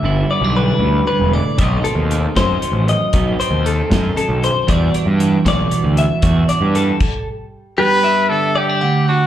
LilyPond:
<<
  \new Staff \with { instrumentName = "Clean electric guitar" } { \time 6/8 \key e \minor \tempo 4. = 77 e''8 d''8 b'4 b'8 d''8 | dis''8 a'4 c''4 dis''8~ | dis''8 c''8 a'4 a'8 c''8 | d''8 r4 d''4 e''8~ |
e''8 d''8 a'4 r4 | g'8 e''4 d''8 fis''4 | }
  \new Staff \with { instrumentName = "Trumpet" } { \time 6/8 \key e \minor r2. | r2. | r2. | r2. |
r2. | b'4 a'8 g'4 fis'8 | }
  \new Staff \with { instrumentName = "Clean electric guitar" } { \time 6/8 \key e \minor << { e'8 b16 d'2~ d'16 | <dis a c' dis'>8 c'4 dis'4. | dis'8 c'4 dis'4. | <e g d' fis'>8 d'4 fis'4. |
fis'8 d'4 r4. | b8 d'8 b8 b16 d'8. d'8 | } \\ { <g, d>4 d8 fis,8 g,8 a,8 | b,4 dis4 fis,4 | b,4 dis4 fis,4 | e,4 e4 b,4 |
r4 e8 r4. | g,4 d4 d,4 | } >> }
  \new Staff \with { instrumentName = "Picked electric bass" } { \clef bass \time 6/8 \key e \minor g,,8 r16 b,,8. d,8 r16 e,,8 r16 | b,,8 r16 dis,8. fis,8 r16 a,,8 r16 | b,,8 r16 dis,8. fis,8 r16 b,,8 r16 | e,8 r16 g,8. b,,8 r16 d,8 r16 |
e,8 r16 g,8. r4. | r2. | }
  \new DrumStaff \with { instrumentName = "Drums" } \drummode { \time 6/8 r4. r4. | <hh bd>8 hh8 hh8 <hh bd sn>8 hh8 hh8 | <hh bd>8 hh8 hh8 <hh bd sn>8 hh8 hh8 | <hh bd>8 hh8 hh8 <hh bd sn>8 hh8 hh8 |
<hh bd>8 hh8 hh8 <cymc bd>4. | r4. r4. | }
>>